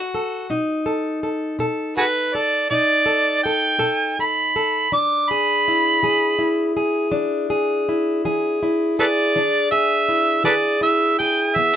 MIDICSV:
0, 0, Header, 1, 3, 480
1, 0, Start_track
1, 0, Tempo, 736196
1, 323, Time_signature, 12, 3, 24, 8
1, 7670, End_track
2, 0, Start_track
2, 0, Title_t, "Harmonica"
2, 0, Program_c, 0, 22
2, 1287, Note_on_c, 0, 66, 53
2, 1287, Note_on_c, 0, 68, 53
2, 1287, Note_on_c, 0, 71, 76
2, 1326, Note_off_c, 0, 68, 0
2, 1332, Note_off_c, 0, 66, 0
2, 1531, Note_on_c, 0, 74, 77
2, 1541, Note_off_c, 0, 71, 0
2, 1759, Note_off_c, 0, 74, 0
2, 1763, Note_on_c, 0, 74, 88
2, 2230, Note_off_c, 0, 74, 0
2, 2239, Note_on_c, 0, 79, 75
2, 2708, Note_off_c, 0, 79, 0
2, 2739, Note_on_c, 0, 83, 74
2, 3199, Note_off_c, 0, 83, 0
2, 3216, Note_on_c, 0, 86, 76
2, 3453, Note_on_c, 0, 83, 91
2, 3462, Note_off_c, 0, 86, 0
2, 4384, Note_off_c, 0, 83, 0
2, 5864, Note_on_c, 0, 69, 59
2, 5864, Note_on_c, 0, 71, 59
2, 5864, Note_on_c, 0, 74, 85
2, 5906, Note_off_c, 0, 69, 0
2, 5907, Note_off_c, 0, 71, 0
2, 6321, Note_off_c, 0, 74, 0
2, 6333, Note_on_c, 0, 76, 79
2, 6794, Note_off_c, 0, 76, 0
2, 6813, Note_on_c, 0, 69, 56
2, 6813, Note_on_c, 0, 71, 56
2, 6813, Note_on_c, 0, 74, 80
2, 6864, Note_off_c, 0, 69, 0
2, 6870, Note_off_c, 0, 71, 0
2, 7042, Note_off_c, 0, 74, 0
2, 7060, Note_on_c, 0, 76, 79
2, 7285, Note_off_c, 0, 76, 0
2, 7293, Note_on_c, 0, 79, 81
2, 7535, Note_on_c, 0, 76, 82
2, 7544, Note_off_c, 0, 79, 0
2, 7670, Note_off_c, 0, 76, 0
2, 7670, End_track
3, 0, Start_track
3, 0, Title_t, "Steel-string acoustic guitar"
3, 0, Program_c, 1, 25
3, 0, Note_on_c, 1, 66, 45
3, 0, Note_on_c, 1, 69, 59
3, 83, Note_off_c, 1, 69, 0
3, 95, Note_on_c, 1, 69, 58
3, 300, Note_off_c, 1, 69, 0
3, 324, Note_on_c, 1, 47, 70
3, 328, Note_on_c, 1, 63, 61
3, 333, Note_off_c, 1, 66, 0
3, 560, Note_on_c, 1, 69, 62
3, 756, Note_off_c, 1, 47, 0
3, 795, Note_off_c, 1, 69, 0
3, 803, Note_on_c, 1, 69, 57
3, 1035, Note_off_c, 1, 69, 0
3, 1035, Note_on_c, 1, 47, 70
3, 1043, Note_on_c, 1, 69, 65
3, 1278, Note_off_c, 1, 69, 0
3, 1286, Note_on_c, 1, 69, 64
3, 1472, Note_off_c, 1, 47, 0
3, 1523, Note_off_c, 1, 69, 0
3, 1531, Note_on_c, 1, 69, 59
3, 1761, Note_off_c, 1, 63, 0
3, 1765, Note_on_c, 1, 47, 73
3, 1769, Note_on_c, 1, 63, 57
3, 1986, Note_off_c, 1, 69, 0
3, 1994, Note_on_c, 1, 69, 68
3, 2197, Note_off_c, 1, 47, 0
3, 2240, Note_off_c, 1, 69, 0
3, 2253, Note_on_c, 1, 69, 62
3, 2465, Note_off_c, 1, 69, 0
3, 2469, Note_on_c, 1, 47, 69
3, 2473, Note_on_c, 1, 69, 67
3, 2719, Note_off_c, 1, 69, 0
3, 2733, Note_on_c, 1, 69, 66
3, 2910, Note_off_c, 1, 47, 0
3, 2965, Note_off_c, 1, 69, 0
3, 2972, Note_on_c, 1, 69, 60
3, 3180, Note_off_c, 1, 63, 0
3, 3181, Note_off_c, 1, 69, 0
3, 3208, Note_on_c, 1, 52, 70
3, 3209, Note_on_c, 1, 62, 60
3, 3461, Note_on_c, 1, 68, 64
3, 3640, Note_off_c, 1, 52, 0
3, 3703, Note_on_c, 1, 64, 50
3, 3930, Note_on_c, 1, 52, 68
3, 3933, Note_off_c, 1, 68, 0
3, 3936, Note_on_c, 1, 68, 61
3, 4162, Note_off_c, 1, 64, 0
3, 4164, Note_on_c, 1, 64, 55
3, 4360, Note_off_c, 1, 52, 0
3, 4409, Note_off_c, 1, 68, 0
3, 4412, Note_on_c, 1, 68, 60
3, 4637, Note_off_c, 1, 62, 0
3, 4638, Note_on_c, 1, 52, 69
3, 4640, Note_on_c, 1, 62, 59
3, 4888, Note_off_c, 1, 68, 0
3, 4890, Note_on_c, 1, 68, 63
3, 5075, Note_off_c, 1, 52, 0
3, 5140, Note_off_c, 1, 64, 0
3, 5142, Note_on_c, 1, 64, 54
3, 5379, Note_off_c, 1, 68, 0
3, 5379, Note_on_c, 1, 52, 67
3, 5381, Note_on_c, 1, 68, 61
3, 5622, Note_off_c, 1, 64, 0
3, 5625, Note_on_c, 1, 64, 54
3, 5805, Note_off_c, 1, 52, 0
3, 5860, Note_off_c, 1, 68, 0
3, 5863, Note_on_c, 1, 68, 59
3, 6101, Note_on_c, 1, 52, 69
3, 6102, Note_off_c, 1, 62, 0
3, 6105, Note_on_c, 1, 62, 56
3, 6123, Note_off_c, 1, 64, 0
3, 6329, Note_off_c, 1, 68, 0
3, 6337, Note_on_c, 1, 68, 59
3, 6525, Note_off_c, 1, 52, 0
3, 6577, Note_on_c, 1, 64, 47
3, 6802, Note_off_c, 1, 68, 0
3, 6807, Note_on_c, 1, 52, 69
3, 6811, Note_on_c, 1, 68, 65
3, 7041, Note_off_c, 1, 64, 0
3, 7049, Note_on_c, 1, 64, 56
3, 7237, Note_off_c, 1, 52, 0
3, 7286, Note_off_c, 1, 68, 0
3, 7303, Note_on_c, 1, 68, 59
3, 7532, Note_off_c, 1, 62, 0
3, 7537, Note_on_c, 1, 52, 70
3, 7539, Note_on_c, 1, 59, 59
3, 7652, Note_off_c, 1, 59, 0
3, 7670, Note_off_c, 1, 52, 0
3, 7670, Note_off_c, 1, 64, 0
3, 7670, Note_off_c, 1, 68, 0
3, 7670, End_track
0, 0, End_of_file